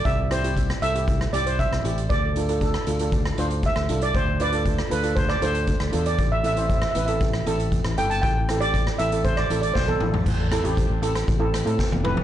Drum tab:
CC |----------------|----------------|----------------|----------------|
HH |x-xxx-xxx-xxx-xx|x-xxx-xxx-xxx-xx|x-xxx-xxx-xxx-xx|x-xxx-xxx-xxx-xx|
SD |--r--r---r---r--|-----r---r---r--|-----r---r---r--|-----r---r---r--|
T1 |----------------|----------------|----------------|----------------|
T2 |----------------|----------------|----------------|----------------|
FT |----------------|----------------|----------------|----------------|
BD |o---o---o---o---|o---o---o---o---|o---o---o---o---|o---o---o---o---|

CC |----------------|x---------------|
HH |x-xxx-xxx-xx----|--xxx-xxx-xx----|
SD |--r--r---r--o---|--r----r--r-o---|
T1 |-------------o--|-------------o--|
T2 |--------------o-|--------------o-|
FT |---------------o|---------------o|
BD |o---o---o---o---|o---o---o---o---|